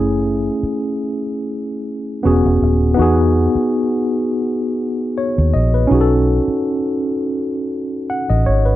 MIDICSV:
0, 0, Header, 1, 4, 480
1, 0, Start_track
1, 0, Key_signature, 4, "major"
1, 0, Tempo, 730816
1, 38, Time_signature, 4, 2, 24, 8
1, 5753, End_track
2, 0, Start_track
2, 0, Title_t, "Tine electric piano"
2, 0, Program_c, 0, 4
2, 0, Control_c, 0, 64, 127
2, 0, Note_on_c, 0, 57, 74
2, 0, Note_on_c, 0, 61, 72
2, 0, Note_on_c, 0, 64, 74
2, 0, Note_on_c, 0, 68, 85
2, 1441, Note_off_c, 0, 57, 0
2, 1449, Note_off_c, 0, 61, 0
2, 1456, Note_off_c, 0, 64, 0
2, 1464, Note_off_c, 0, 68, 0
2, 1465, Note_on_c, 0, 59, 74
2, 1472, Note_on_c, 0, 61, 66
2, 1480, Note_on_c, 0, 66, 73
2, 1487, Control_c, 0, 64, 0
2, 1488, Note_on_c, 0, 68, 84
2, 1614, Control_c, 0, 64, 127
2, 1926, Note_off_c, 0, 59, 0
2, 1934, Note_on_c, 0, 59, 76
2, 1950, Note_on_c, 0, 63, 68
2, 1956, Note_off_c, 0, 61, 0
2, 1957, Note_off_c, 0, 66, 0
2, 1964, Note_off_c, 0, 68, 0
2, 1965, Note_on_c, 0, 66, 73
2, 1967, Control_c, 0, 64, 0
2, 1981, Note_on_c, 0, 68, 85
2, 2067, Control_c, 0, 64, 127
2, 3400, Note_on_c, 0, 73, 66
2, 3628, Note_off_c, 0, 73, 0
2, 3636, Note_on_c, 0, 75, 70
2, 3761, Note_off_c, 0, 75, 0
2, 3771, Note_on_c, 0, 71, 59
2, 3840, Note_off_c, 0, 59, 0
2, 3848, Note_off_c, 0, 63, 0
2, 3856, Note_off_c, 0, 66, 0
2, 3857, Note_on_c, 0, 61, 80
2, 3864, Note_off_c, 0, 68, 0
2, 3872, Note_on_c, 0, 63, 66
2, 3887, Control_c, 0, 64, 0
2, 3888, Note_on_c, 0, 66, 68
2, 3903, Note_on_c, 0, 68, 65
2, 3937, Note_off_c, 0, 68, 0
2, 3946, Note_on_c, 0, 69, 86
2, 3998, Note_off_c, 0, 71, 0
2, 4020, Control_c, 0, 64, 127
2, 5319, Note_on_c, 0, 78, 65
2, 5442, Note_off_c, 0, 78, 0
2, 5449, Note_on_c, 0, 75, 66
2, 5553, Note_off_c, 0, 75, 0
2, 5559, Note_on_c, 0, 73, 73
2, 5682, Note_off_c, 0, 73, 0
2, 5685, Note_on_c, 0, 71, 65
2, 5753, Note_off_c, 0, 61, 0
2, 5753, Note_off_c, 0, 63, 0
2, 5753, Note_off_c, 0, 66, 0
2, 5753, Note_off_c, 0, 69, 0
2, 5753, Note_off_c, 0, 71, 0
2, 5753, End_track
3, 0, Start_track
3, 0, Title_t, "Fingered electric bass"
3, 0, Program_c, 1, 33
3, 0, Note_on_c, 1, 30, 84
3, 321, Note_off_c, 1, 30, 0
3, 1481, Note_on_c, 1, 28, 95
3, 1591, Note_off_c, 1, 28, 0
3, 1612, Note_on_c, 1, 28, 88
3, 1705, Note_off_c, 1, 28, 0
3, 1722, Note_on_c, 1, 27, 85
3, 1926, Note_off_c, 1, 27, 0
3, 1963, Note_on_c, 1, 40, 98
3, 2277, Note_off_c, 1, 40, 0
3, 3535, Note_on_c, 1, 39, 92
3, 3627, Note_off_c, 1, 39, 0
3, 3642, Note_on_c, 1, 34, 83
3, 3846, Note_off_c, 1, 34, 0
3, 3881, Note_on_c, 1, 35, 101
3, 4196, Note_off_c, 1, 35, 0
3, 5453, Note_on_c, 1, 33, 96
3, 5545, Note_off_c, 1, 33, 0
3, 5566, Note_on_c, 1, 32, 88
3, 5753, Note_off_c, 1, 32, 0
3, 5753, End_track
4, 0, Start_track
4, 0, Title_t, "Muted fingered electric bass strokes"
4, 414, Note_on_c, 9, 29, 48
4, 480, Note_off_c, 9, 29, 0
4, 2333, Note_on_c, 9, 29, 47
4, 2399, Note_off_c, 9, 29, 0
4, 4254, Note_on_c, 9, 29, 48
4, 4320, Note_off_c, 9, 29, 0
4, 5753, End_track
0, 0, End_of_file